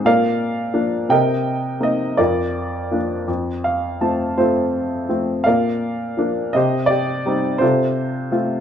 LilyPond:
<<
  \new Staff \with { instrumentName = "Grand piano" } { \time 6/8 \key bes \major \tempo 4. = 55 << { f''4. g''4 ees''8 | d''4 r4 f''8 a''8 | c''4. f''4. | ees''8 d''4 c''4 r8 | } \\ { <bes' d''>4. <bes' ees''>4. | <f' bes'>4. r4. | <f' a'>4. <bes' d''>4. | <g' c''>8 g'4 <f' a'>4. | } >> }
  \new Staff \with { instrumentName = "Grand piano" } { \time 6/8 \key bes \major bes,4 <f bes d'>8 c4 <bes c' ees'>8 | f,4 <f bes d'>8 f,4 <f a c'>8 | <f a c'>4 <f a c'>8 bes,4 <f bes d'>8 | c4 <g c' ees'>8 c4 <a c' f'>8 | }
>>